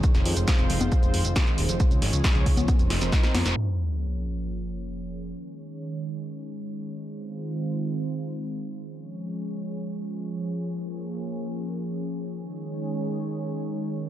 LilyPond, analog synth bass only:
\new Staff \with { instrumentName = "Analog synth bass" } { \clef bass \time 4/4 \key bes \minor \tempo 4 = 136 r16 f,,16 f,16 f,,16 r16 f,,16 f,,16 f,,16 r16 f,,16 f,,16 f,,16 r8 ees,,16 f,,16 | r16 des,16 aes,,16 des,16 r16 des,16 des,16 des,16 r16 f,,16 f,,16 f,,16 r8 f,16 f,,16 | r1 | r1 |
r1 | r1 | r1 | r1 | }